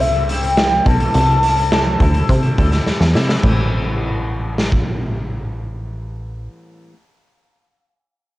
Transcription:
Already playing: C2 G3 C4 E4 A4
0.00 E5, closed hi-hat
0.14 G3 C4 E4 A4
0.28 G3 C4 E4 A4 G5, closed hi-hat
0.42 G3 C4 E4 A4, closed hi-hat
0.57 snare
0.85 B1 G3 C4 E4 A4 A5, kick, closed hi-hat
1.00 C3 E3 G3 C4 E4 A4, closed hi-hat
1.14 C2 C3 E3 G3 C4 E4 A4, closed hi-hat
1.43 G3 C4 E4 A4, closed hi-hat
1.56 G3 C4 E4 A4, closed hi-hat
1.71 C3 E3 G3 C4 E4 A4, snare
1.99 D2 G3 C4 E4 A4, kick, closed hi-hat
2.14 G3 C4 E4 A4, closed hi-hat
2.29 C3, kick, closed hi-hat
2.43 G3 C4 E4 A4, closed hi-hat
2.56 D2 G3 C4 E4 A4, kick, closed hi-hat
2.71 G3 C4 E4 A4, snare, closed hi-hat
2.86 E2, snare
3.00 E2, snare
3.13 C3 G3 C4 E4 A4, snare
3.28 C3 E3 G3 C4 E4 A4, snare
3.40 A1 A2 E3, kick, crash
3.45 G3 C4 E4
3.49 A4
4.58 snare
4.72 kick

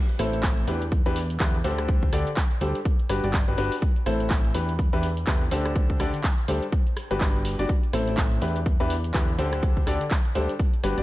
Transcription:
0.09 closed hi-hat
0.19 A1 A2 C4 E4 A4 C5, cross-stick, open hi-hat
0.33 closed hi-hat
0.43 kick, clap, closed hi-hat
0.57 closed hi-hat
0.68 E2 E3 D4 E4 G4 B4, open hi-hat
0.82 closed hi-hat
0.92 kick, closed hi-hat
1.06 E2 E3 D4 E4 G4 B4, closed hi-hat
1.16 open hi-hat
1.30 closed hi-hat
1.40 E2 D3 D4 E4 G4 B4, kick, clap, closed hi-hat
1.54 closed hi-hat
1.64 D2 D3 D4 G4 A4 C5, open hi-hat
1.78 cross-stick, closed hi-hat
1.88 kick, closed hi-hat
2.03 kick, closed hi-hat
2.13 D2 D3 D4 G4 A4 D5, cross-stick, open hi-hat
2.27 closed hi-hat
2.37 kick, clap, closed hi-hat
2.51 closed hi-hat
2.61 D2 G3 D4 G4 A4 C5, open hi-hat
2.75 closed hi-hat
2.85 kick, closed hi-hat
2.99 closed hi-hat
3.09 G1 G3 D4 F#4 G4 B4, cross-stick, open hi-hat
3.24 G1 G3 D4 F#4 G4 D5, closed hi-hat
3.33 kick, clap, closed hi-hat
3.48 G1 G3 D4 F#4 G4 B4, closed hi-hat
3.58 G1 D4 F#4 G4 B4, open hi-hat
3.72 open hi-hat
3.82 kick, closed hi-hat
3.96 closed hi-hat
4.06 A1 A2 C4 E4 A4 C5, cross-stick, open hi-hat
4.20 closed hi-hat
4.30 kick, clap, closed hi-hat
4.45 closed hi-hat
4.55 E2 E3 D4 E4 G4 B4, open hi-hat
4.69 closed hi-hat
4.79 kick, closed hi-hat
4.93 E2 E3 D4 E4 G4 B4, closed hi-hat
5.03 open hi-hat
5.17 closed hi-hat
5.27 E2 D3 D4 E4 G4 B4, kick, clap, closed hi-hat
5.41 closed hi-hat
5.51 D2 D3 D4 G4 A4 C5, open hi-hat
5.65 cross-stick, closed hi-hat
5.76 kick, closed hi-hat
5.90 kick, closed hi-hat
6.00 D2 D3 D4 G4 A4 D5, cross-stick, open hi-hat
6.14 closed hi-hat
6.24 kick, clap, closed hi-hat
6.38 closed hi-hat
6.48 D2 G3 D4 G4 A4 C5, open hi-hat
6.62 closed hi-hat
6.72 kick, closed hi-hat
6.87 closed hi-hat
6.97 cross-stick, open hi-hat
7.11 G1 G3 D4 F#4 G4 B4, closed hi-hat
7.21 kick, clap, closed hi-hat
7.35 closed hi-hat
7.45 open hi-hat
7.59 G1 D4 F#4 G4 D5, open hi-hat
7.69 kick, closed hi-hat
7.83 closed hi-hat
7.93 A1 A2 C4 E4 A4 C5, cross-stick, open hi-hat
8.07 closed hi-hat
8.17 kick, clap, closed hi-hat
8.32 closed hi-hat
8.42 E2 E3 D4 E4 G4 B4, open hi-hat
8.56 closed hi-hat
8.66 kick, closed hi-hat
8.80 E2 E3 D4 E4 G4 B4, closed hi-hat
8.90 open hi-hat
9.04 closed hi-hat
9.14 E2 D3 D4 E4 G4 B4, kick, clap, closed hi-hat
9.28 closed hi-hat
9.39 D2 D3 D4 G4 A4 C5, open hi-hat
9.53 cross-stick, closed hi-hat
9.63 kick, closed hi-hat
9.77 kick, closed hi-hat
9.87 D2 D3 D4 G4 A4 D5, cross-stick, open hi-hat
10.01 closed hi-hat
10.11 kick, clap, closed hi-hat
10.25 closed hi-hat
10.35 D2 G3 D4 G4 A4 C5, open hi-hat
10.49 closed hi-hat
10.59 kick, closed hi-hat
10.74 closed hi-hat
10.84 G1 G3 D4 F#4 G4 B4, cross-stick, open hi-hat
10.98 G1 G3 D4 F#4 G4 D5, closed hi-hat

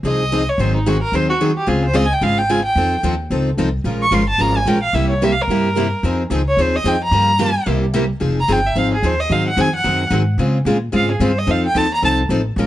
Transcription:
0.03 C2 F3 C4 D#4 G#4 D#5
0.32 F3 C4 D#4 G#4
0.49 C#5
0.58 G#1 D#3 F#3 C4 D#4 G#4 C5
0.76 D#4
0.86 D#3 F#3 C4 D#4 F#4 G#4
1.02 A#4
1.12 D#2 D#3 F#3 C4 D#4 G#4 C5
1.30 F#4
1.40 D#3 F#3 C4 D#4 G#4
1.57 G4
1.67 C#2 C#3 G#3 C4 F4 G#4
1.85 C5
1.93 C#3 G#3 C4 F4 G#4 D#5
2.05 G#5
2.13 G5
2.21 G#1 C#3 G#3 C4 F4 G#4 F5
2.38 G5
2.49 C#3 G#3 C4 F4 G#4 G#5
2.65 G5
2.75 F2 F3 C4 D#4 A4
3.03 D#2 F3 C4 D#4 A4
3.30 C#2 F3 C4 D#4 A4
3.57 C2 F3 C4 D#4 A4
3.84 A#1 F3 G#3 C#4 F4 A#4
4.02 C#6
4.11 G1 F3 G#3 C#4 F4 A#4 C6
4.29 A5
4.38 G#1 F3 G#3 C#4 F4 A#4 A#5
4.56 G#5
4.65 A#1 F3 G#3 C#4 F4 A#4 G5
4.83 F5
4.93 C2 C3 G3 A#3 E4 G4 E5
5.10 C#5
5.22 C3 G3 A#3 E4 G4 E5
5.32 F5
5.42 A#4
5.48 G2 C3 G3 A#3 E4 G4
5.76 C3 G3 A#3 E4 G4
6.03 F2 F3 C4 D#4 G#4
6.30 C#2 F3 C4 D#4 G#4
6.48 C#5
6.57 D#2 F3 C4 D#4 G#4
6.61 C5
6.76 D#5
6.84 F2 F3 C4 D#4 G#4 G5
7.04 A#5
7.11 G2 C#3 F3 A#3 F4 G4
7.38 C#3 F3 A#3 F4 G4
7.66 C2 C3 G3 A#3 E4 G4
7.94 C3 G3 A#3 E4 G4
8.20 F1 F3 C4 D#4 G#4
8.40 A#5
8.48 G1 F3 C4 D#4 G#4
8.52 G5
8.67 E5
8.75 G#1 F3 C4 D#4 G#4 F5
8.94 G#4
9.03 D#2 F3 C4 D#4 G#4 C5
9.20 D#5
9.30 G#2 D#3 F#3 C4 D#4 G#4 F5
9.48 F#5
9.57 F2 D#3 F#3 C4 D#4 G#4 G#5
9.75 F#5
9.84 F#2 D#3 F#3 C4 D#4 G#4
10.10 G#2 D#3 F#3 C4 D#4 G#4
10.38 C#3 G#3 C4 F4 G#4
10.65 A#2 C#3 G#3 C4 F4 G#4
10.92 G#2 C#3 G#3 C4 F4 G#4
10.96 F5
11.12 G#4
11.20 G2 C#3 G#3 C4 F4 G#4
11.24 C5
11.38 D#5
11.47 F2 F3 C4 D#4 A4 F5
11.66 G5
11.74 D#2 F3 C4 D#4 A4 A5
11.94 A#5
12.02 C2 F3 C4 D#4 A4 A5
12.29 A1 F3 C4 D#4 A4
12.56 A#1 F3 G#3 C#4 F4 A#4

